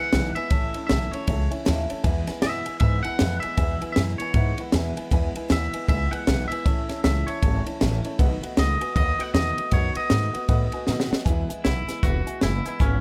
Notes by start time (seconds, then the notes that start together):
Already playing: E4 F#5
0.00 E3 G#3 B3
0.13 B1 E2 B2 E3 G#3 B3 E4 B4 E5 G#5, snare, ride
0.35 E3 G#3 B3 E4 B4 E5 G#5, muted upright bass stroke, ride
0.50 A1 A2 E3 A3 C#4 E4 C#5 E5 A5, kick, ride
0.74 A3 C#4 E4 C#5 E5 A5, muted upright bass stroke, ride
0.87 B1 A2 E3 A3 C#4 C#5 E5, snare, ride
0.91 E4 A5
1.12 A3 C#4 E4 C#5 E5 A5, ride
1.27 C#2 E3 A3 C#4 E4 C#5 E5 A5, kick, ride
1.50 A3 C#4 E4 C#5 E5 G#5, ride
1.65 D#2 A2 E3 A3 C#4 E4 C#5 E5 A5, snare, ride
1.89 A3 C#4 E4 C#5 E5 A5, muted upright bass stroke, ride
2.03 E2 B2 E3 G#3 B3 E4 B4 E5 G#5, kick, ride
2.27 E3 G#3 B3 E4 B4 E5 G#5, muted upright bass stroke, snare, ride
2.42 E2 F#2 B2 E3 G#3 B3 E4 B4 E5 G#5, snare, ride
2.65 G#3 B3 E4 B4 E5 G#5, muted upright bass stroke, ride
2.80 G#2 E3 G#3 B3 B4 E5 G#5, kick, ride
2.84 E4
3.03 G#3 B3 E4 B4 E5 F#5 G#5, muted upright bass stroke, ride
3.08 E3
3.19 E2 F2 B2 E3 G#3 B3 E4 B4 E5 G#5, snare, ride
3.40 E4 B4 E5 G#5, ride
3.44 E3 G#3 B3, muted upright bass stroke
3.57 E2 B2 E3 G#3 B3 E4 B4 E5 G#5, kick, ride
3.81 E3 G#3 B3 E4 B4 E5 G#5, muted upright bass stroke, ride
3.92 E2 B4 E5, snare, ride
3.97 F#2 B2 E3 G#3 B3 E4 G#5
4.18 G#3 B3 E4 B4 C#5 E5 G#5, muted upright bass stroke, ride
4.22 E3
4.34 G#2 E3 G#3 B3 E4 B4 E5 F#5, kick, ride
4.58 E3 G#3 B3 E4 B4 E5 F#5, muted upright bass stroke, ride
4.72 E2 B2 E3 G#3 B3 E4 B4 E5 G#5, snare, ride
4.96 E3 G#3 B3 E4 B4 E5 G#5, muted upright bass stroke, ride
5.10 E2 B2 E3 G#3 B3 E4 B4 E5 G#5, kick, ride
5.35 E3 G#3 B3 E4 B4 E5 G#5, muted upright bass stroke, ride
5.48 D#2 E2 B2 E3 G#3 B3 E4 B4 E5 G#5, snare, ride
5.73 E3 G#3 B3 E4 B4 E5 G#5, muted upright bass stroke, ride
5.87 C#2 E3 G#3 B3 E4 B4 E5 G#5, kick, ride
6.11 E3 G#3 B3 E4 B4 E5 F#5 G#5, ride
6.27 B1 E2 B2 E3 G#3 B3 E4 B4 E5 G#5, snare, ride
6.48 B3 E4 E5, muted upright bass stroke, ride
6.52 E3 G#3 B4 G#5
6.65 A1 A2 E3 A3 C#4 E4 C#5 E5 A5, kick, ride
6.89 A3 C#4 E4 C#5 E5 A5, muted upright bass stroke, snare, ride
7.03 C#2 A2 E3 A3 C#4 E4 C#5 E5 A5, snare, ride
7.27 A3 C#4 E4 C#5 E5 A5, ride
7.42 G#1 E3 A3 C#4 E4 C#5 E5 A5, kick, ride
7.66 A3 C#4 E4 C#5 E5 A5, muted upright bass stroke, ride
7.81 A1 A2 E3 A3 C#4 E4 C#5 E5 A5, snare, ride
8.05 A3 C#4 E4 C#5 E5 A5, muted upright bass stroke, ride
8.19 B1 B2 D#3 A3 B3 F#4 B4 D#5 F#5, kick, ride
8.41 A3 B3 F#4 B4 D#5 F#5, muted upright bass stroke, ride
8.57 C#2 B2 D#3 A3 B3 F#4 B4 D#5 F#5, snare, ride
8.81 A3 B3 F#4 B4 D#5 G#5, ride
8.96 D#2 D#3 A3 B3 F#4 B4 D#5 F#5, kick, ride
9.18 A3 B3 F#4 B4 D#5 F#5, muted upright bass stroke, ride
9.33 E2 B2 D#3 A3 B3 F#4 B4 D#5 F#5, snare, ride
9.57 A3 B3 F#4 B4 D#5 F#5, muted upright bass stroke, ride
9.71 F#2 B2 D#3 A3 B3 F#4 B4 C#5 D#5 F#5, kick, ride
9.95 B3 F#4 B4 D#5 F#5, muted upright bass stroke, ride
10.00 A3
10.10 G#2 B2 D#3 A3 B3 F#4 B4 D#5 F#5, snare, ride
10.33 B3 F#4 B4 D#5 F#5, muted upright bass stroke, ride
10.37 A3
10.49 A2 D#3 A3 B3 F#4 B4 D#5 F#5, kick, ride
10.72 B3 F#4 B4 D#5 G#5, muted upright bass stroke, ride
10.77 A3
10.87 B2 D#3 A3 B3 F#4 B4 D#5 F#5, snare
11.00 snare
11.11 A3 B3 F#4 B4 D#5 F#5, muted upright bass stroke, snare
11.25 E2 B2 E3 G#3 B4 E5 G#5, kick, closed hi-hat
11.29 B3 E4
11.48 G#3 B3 E4 B4 E5 G#5, muted upright bass stroke, closed hi-hat
11.53 E3
11.64 B1 E3 G#3 B3 E4 B4 E5 F#5, snare, closed hi-hat
11.87 E3 G#3 B3 E4 B4 E5 G#5, muted upright bass stroke, snare, closed hi-hat
12.02 E1 E2 B2 E3 G#3 B3 E4 F#4 B4 E5 B5, kick, closed hi-hat
12.26 E3 G#3 B3 E4 B4 E5 G#5, closed hi-hat
12.41 F#1 E3 G#3 B3 E4 B4 E5 G#5, snare, closed hi-hat
12.65 E3 G#3 B3 E4 B4 E5 G#5, closed hi-hat
12.79 G#1 E2 B2 E3 G#3 B3 C#4 E4 B4 E5 G#5, kick, closed hi-hat